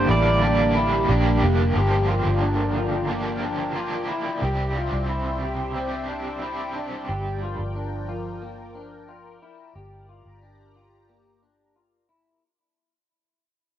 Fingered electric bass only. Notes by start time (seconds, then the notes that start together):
0.09 A1
1.09 A#1
1.42 F1
1.76 G1
2.25 G1
4.42 C2
4.92 C2
7.09 G1
7.59 G1
9.75 G1
10.25 G1